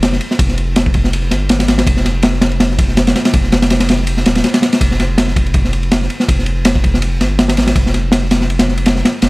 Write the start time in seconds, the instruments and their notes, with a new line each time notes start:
Already playing: sub bass F1
0.03 snare, ride
0.13 snare
0.21 ride
0.31 snare
0.39 sub bass F1, kick, ride
0.49 snare
0.58 ride
0.76 snare, ride
0.86 kick
0.94 kick, ride
1.04 snare
1.13 ride
1.31 sub bass G1, snare, ride
1.49 snare, ride
1.59 snare, ride
1.68 sub bass G#1, snare, ride
1.78 snare, ride
1.87 sub bass F1, kick, ride
1.97 snare
2.05 snare, ride
2.23 snare, ride
2.34 snare
2.41 snare, ride
2.52 ride
2.60 snare, ride
2.71 snare
2.79 kick, ride
2.88 snare
2.97 snare, ride
3.07 snare, ride
3.16 snare, ride
3.25 snare, ride
3.34 sub bass F1, kick, ride
3.44 snare
3.52 snare, ride
3.62 snare, ride
3.70 snare, ride
3.80 snare, ride
3.89 snare, ride
3.99 snare
4.07 ride
4.17 snare
4.26 sub bass D#1, snare, ride
4.35 snare, ride
4.44 snare, ride
4.54 snare, ride
4.62 snare, ride
4.73 snare, ride
4.81 sub bass F1, kick, ride
4.91 snare
5.00 snare, ride
5.18 snare, ride
5.28 snare
5.36 kick, ride
5.46 ride
5.54 kick, ride
5.65 snare
5.73 ride
5.83 ride
5.92 snare, ride
6.02 snare
6.10 ride
6.20 snare
6.29 sub bass F1, kick, ride
6.39 snare
6.46 ride
6.65 snare, ride
6.76 kick
6.84 kick, ride
6.94 snare
7.02 ride
7.20 sub bass G1, snare, ride
7.39 snare, ride
7.48 snare, ride
7.57 sub bass G#1, snare, ride
7.67 snare, ride
7.76 sub bass F1, kick, ride
7.86 snare
7.94 snare, ride
8.12 snare, ride
8.23 snare
8.31 snare, ride
8.41 snare
8.50 ride
8.59 snare, ride
8.69 snare
8.78 ride
8.86 snare, ride
8.96 snare
9.05 snare, ride
9.22 sub bass F1, snare, ride